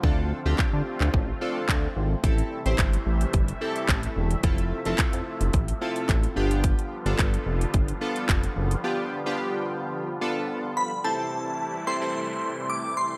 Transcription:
<<
  \new Staff \with { instrumentName = "Synth bell" } { \time 4/4 \key a \minor \tempo 4 = 109 r1 | r1 | r1 | r1 |
r2. r8 b''8 | a''4. c'''4. d'''8 c'''8 | }
  \new Staff \with { instrumentName = "Synth keys" } { \time 4/4 \key a \minor <c' d' f' a'>8. <c' d' f' g'>4. r16 <c' d' f' a'>4~ <c' d' f' a'>16 r16 | <c' e' g' a'>8. <c' e' g' c''>4. r16 <c' e' g' a'>4~ <c' e' g' a'>16 r16 | <c' e' f' a'>8. <c' e' f' a'>4. r16 <c' e' f' a'>4 <b d' f' g'>8~ | <b d' f' g'>8 r16 <b d' f' a'>4. r16 <b d' f' a'>4~ <b d' f' a'>16 r16 |
<b d' f' g'>8. <b d' f' g'>4. r16 <b d' f' a'>4~ <b d' f' a'>16 r16 | <c' e' g' a' c''>4~ <c' e' g' a' c''>16 r16 <c' e' g' a' c''>16 <c' e' g' a' c''>4.~ <c' e' g' a' c''>16 r8 | }
  \new Staff \with { instrumentName = "Supersaw synth" } { \clef bass \time 4/4 \key a \minor << { <c' f'>1 | <a e''>1~ | <a e''>2.~ <a e''>8 <b f'>8~ | <b f'>1~ |
<b f'>1 | <a e'>1 | } \\ { <d f a>1 | <c e g>1 | <c f>2.~ <c f>8 <d g>8~ | <d g>1~ |
<d g>1 | <c e g>1 | } >> }
  \new Staff \with { instrumentName = "Analog synth bass" } { \clef bass \time 4/4 \key a \minor d,8. d,16 d16 d16 r16 d,16 a,,8 r8 d,8 gis,,8 | a,,8 r16 a,,16 g,,8 a,,8 g,,8 r8 a,,8 e,,8 | f,,8. f,,16 f,16 f,16 r16 f,,16 a,,8 r8 a,,8 g,,8~ | g,,8 r16 g,,16 g,,8 f,,8 g,,8 r8 f,,8 fis,,8 |
r1 | r1 | }
  \new DrumStaff \with { instrumentName = "Drums" } \drummode { \time 4/4 bd4 <hc bd>8. hc16 bd4 <hc bd>4 | <hh bd>16 hh8 hh16 <hc hh bd>16 hh8 hh16 <hh bd>16 hh8 hh16 <hc hh bd>16 hh8 hh16 | <hh bd>16 hh8 hh16 <hc hh bd>16 hh8 hh16 <hh bd>16 hh8 hh16 <hc hh bd>16 hh8 hh16 | <hh bd>16 hh8 hh16 <hc hh bd>16 hh8 hh16 <hh bd>16 hh8 hh16 <hc hh bd>16 hh8 hh16 |
r4 r4 r4 r4 | r4 r4 r4 r4 | }
>>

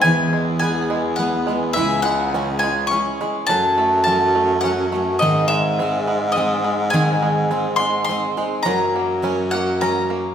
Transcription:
<<
  \new Staff \with { instrumentName = "Mandolin" } { \time 3/4 \key gis \phrygian \tempo 4 = 104 gis''4 gis''4 fis''4 | e''8 fis''4 gis''8 cis'''4 | a''4 a''4 fis''4 | dis''8 e''4. dis''8. r16 |
gis''4. bis''8 bis''4 | ais''4. fis''8 ais''4 | }
  \new Staff \with { instrumentName = "Steel-string acoustic guitar" } { \time 3/4 \key gis \phrygian <e gis b e' gis'>4 <gis b e' gis'>4 <gis b e' gis'>8 <b e' gis'>8 | <cis gis cis' e' gis'>4 <gis cis' e' gis'>8 <cis' e' gis'>8 <gis cis' e' gis'>8 <cis' e' gis'>8 | <fis cis' fis' a'>4 <fis cis' fis' a'>4 <fis cis' fis' a'>8 <cis' fis' a'>8 | <gis, dis gis bis dis' gis'>4 <gis bis gis'>4 <gis bis dis' gis'>4 |
<gis, dis gis bis dis' gis'>4 <gis bis dis' gis'>8 <gis bis dis' gis'>8 <gis bis dis' gis'>8 <gis bis dis' gis'>8 | <fis cis' fis' ais'>4 <fis cis' fis' ais'>4 <fis cis' fis' ais'>4 | }
  \new Staff \with { instrumentName = "Five-string banjo" } { \clef bass \time 3/4 \key gis \phrygian e8 gis8 b8 gis8 b8 gis8 | e8 gis8 cis'8 gis8 cis'8 gis8 | fis8 a8 cis'8 a8 cis'8 a8 | dis8 gis8 bis8 gis8 bis8 gis8 |
dis8 gis8 bis8 gis8 bis8 gis8 | fis8 ais8 cis'8 ais8 cis'8 ais8 | }
  \new Staff \with { instrumentName = "Baritone saxophone" } { \clef bass \time 3/4 \key gis \phrygian e,2. | cis,2~ cis,8 r8 | fis,2. | gis,2.~ |
gis,2~ gis,8 r8 | fis,2. | }
>>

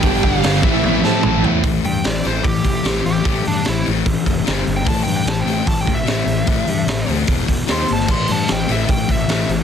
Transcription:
<<
  \new Staff \with { instrumentName = "Lead electric guitar" } { \time 4/4 \key a \phrygian \tempo 4 = 149 g''8 f''4 e''8 e''8 a''4 r8 | r8 g''8 d''8 c''8 g'4. g'8~ | g'8 d'8 e'8 r4. \tuplet 3/2 { r4 g''8 } | \tuplet 3/2 { a''8 g''8 g''8 a''8 g''8 g''8 a''8 g''8 e''8~ } e''4~ |
e''4. r4. c'''8 a''8 | c'''8 a''8 g''8 e''8 g''8 e''4 r8 | }
  \new Staff \with { instrumentName = "Distorted electric guitar" } { \clef bass \time 4/4 \key a \phrygian <g, d g bes d'>4. <a, e a c' e'>2~ <a, e a c' e'>8 | r1 | r1 | r1 |
r1 | r1 | }
  \new Staff \with { instrumentName = "Distorted electric guitar" } { \clef bass \time 4/4 \key a \phrygian <g, d g>4 <g, d g>8 <a, e a>8 <a, e a>4 <a, e a>8 <a, e a>8 | <a, e a>8 <a, e>8 <a, e>8 <a, e a>8 <a, e>8 <a, e>8 <a, e a>8 <a, e>8 | <a, e a>8 <a, e>8 <a, e>8 <a, e a>8 <a, e>8 <a, e>8 <g, d g>8 <g, d>8 | <a, e a>8 <a, e>8 <a, e>8 <a, e a>8 <a, e>8 <a, e>8 <a, e a>8 <a, e>8 |
<a, e a>8 <a, e>8 <a, e>8 <a, e a>8 <e, b, e>8 <e, b,>8 <dis ais dis'>8 <dis ais>8 | <a, e a>8 <a, e>8 <a, e>8 <a, e a>8 <a, e>8 <a, e>8 <a, e a>8 <a, e>8 | }
  \new Staff \with { instrumentName = "Overdriven electric guitar" } { \clef bass \time 4/4 \key a \phrygian <g, d g>4 <g, d g>8 <a, e a>8 <a, e a>4 <a, e a>8 <a, e a>8 | r1 | r1 | r1 |
r1 | r1 | }
  \new Staff \with { instrumentName = "Picked electric bass" } { \clef bass \time 4/4 \key a \phrygian g,,8 g,,8 g,,8 a,,8 a,,8 a,8 a,,8 e,8 | a,,8 g,8 a,,8 a,,8 a,,8 a,,8 a,,8 a,,8 | a,,8 g,8 a,,8 a,,8 a,,8 f,,8 g,,8 g,,8 | a,,8 g,8 a,,8 a,,8 a,,8 a,,8 a,,8 a,,8 |
a,,8 g,8 a,,8 d,8 e,,8 e,,8 dis,8 g,,8 | a,,8 g,8 a,,8 a,,8 a,,8 a,,8 a,,8 a,,8 | }
  \new DrumStaff \with { instrumentName = "Drums" } \drummode { \time 4/4 <hho bd>8 bd8 <hho sn>16 sn16 bd8 tommh8 sn8 toml8 tomfh8 | <hho bd>8 hho8 <hho sn>8 hho8 <hho bd>8 <hho bd>8 <hho sn>16 sn16 hho8 | <hho bd>8 hho8 <hho sn>8 hho8 <hho bd>8 <hho bd>8 <hho sn>8 hho8 | <hho bd>8 hho8 <hho sn>8 hho8 <hho bd>8 <hho bd>8 <hho sn>16 sn16 hho8 |
<hho bd>8 hho8 <hho sn>8 hho8 <hho bd>8 <hho bd>8 <hho sn>16 sn16 hho16 sn16 | <cymc bd>8 hho8 <hho sn>8 hho8 <hho bd>8 <hho bd>8 <hho sn>16 sn16 hho8 | }
>>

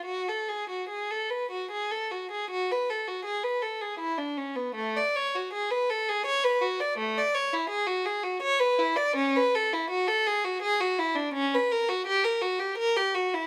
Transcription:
\new Staff \with { instrumentName = "Violin" } { \time 3/4 \key fis \minor \tempo 4 = 82 fis'16 a'16 gis'16 fis'16 gis'16 a'16 b'16 fis'16 gis'16 a'16 fis'16 gis'16 | fis'16 b'16 a'16 fis'16 gis'16 b'16 a'16 gis'16 e'16 d'16 cis'16 b16 | a16 d''16 cis''16 fis'16 gis'16 b'16 a'16 gis'16 cis''16 b'16 fis'16 d''16 | a16 d''16 cis''16 e'16 gis'16 fis'16 gis'16 fis'16 cis''16 b'16 e'16 d''16 |
cis'16 b'16 a'16 e'16 fis'16 a'16 gis'16 fis'16 gis'16 fis'16 e'16 d'16 | \key fis \phrygian cis'16 b'16 ais'16 fis'16 g'16 ais'16 fis'16 g'16 ais'16 g'16 fis'16 e'16 | }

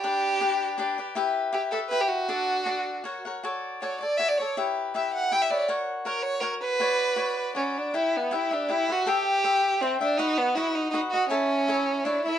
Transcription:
<<
  \new Staff \with { instrumentName = "Cavaquinho" } { \time 3/4 \key b \minor \tempo 4 = 160 <d' g' b' d''>4 <d' g' b' d''>4 <d' g' b' d''>8 <g' b' d''>8 | <e' g' b' e''>4 <e' g' b' e''>8 <g' b' e''>8 <e' g' b' e''>4 | <d' a' d'' fis''>4 <d' a' d'' fis''>4 <fis' ais' cis'' fis''>8 <ais' cis'' fis''>8 | <fis' a' cis'' d''>4 <fis' a' cis'' d''>8 <a' cis'' d''>8 <fis' a' cis'' d''>8 <a' cis'' d''>8 |
<e' g' b' e''>4 <e' g' b' e''>4 <e' g' b' e''>8 <g' b' e''>8 | <fis' ais' cis'' fis''>4 <fis' ais' cis'' fis''>4 <fis' ais' cis'' fis''>4 | <fis' b' cis'' d''>4 <fis' b' cis'' d''>4 <fis' b' cis'' d''>4 | \key e \minor <e' g' b' e''>4 <e' g' b' e''>8 <g' b' e''>8 <e' g' b' e''>8 <g' b' e''>8 |
<a' c'' e'' g''>4 <a' c'' e'' g''>4 <a' c'' e'' g''>8 <c'' e'' g''>8 | <fis' b' dis'' fis''>4 <fis' b' dis'' fis''>4 <fis' b' dis'' fis''>8 <b' dis'' fis''>8 | <e' a' cis'' e''>4 <e' a' cis'' e''>4 <e' a' cis'' e''>8 <a' cis'' e''>8 | }
  \new Staff \with { instrumentName = "Violin" } { \time 3/4 \key b \minor g'2~ g'8 r8 | r4 g'8 a'8 b'16 g'16 fis'8~ | fis'2~ fis'8 r8 | r4 cis''8 d''8 e''16 d''16 cis''8 |
r4 e''8 fis''8 g''16 e''16 d''32 cis''32 d''16 | r4 ais'8 cis''8 ais'16. r32 b'8~ | b'2 cis'8 d'8 | \key e \minor e'8 b8 e'8 d'8 e'8 fis'8 |
g'2 c'8 d'8 | dis'8 b8 e'8 dis'8 dis'8 fis'8 | cis'2 d'8 e'8 | }
>>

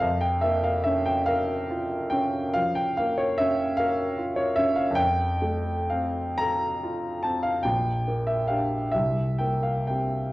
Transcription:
\new Staff \with { instrumentName = "Grand piano" } { \time 12/8 \key bes \lydian \tempo 4. = 47 << { f''16 g''16 e''16 f''16 e''16 g''16 f''4 g''8 f''16 g''16 f''16 des''16 e''8 f''8. des''16 e''16 f''16 | g''4 f''8 bes''4 a''16 f''16 g''8. e''16 f''8 e''8 g''16 f''16 g''8 | } \\ { f,8 bes8 des'8 bes'8 f'8 des'8 f8 bes8 des'8 bes'8 f'8 des'8 | f,8 a8 c'8 a'8 f'8 c'8 bes,,8 bes8 <d' g'>8 c,8 bes8 <c' g'>8 | } >> }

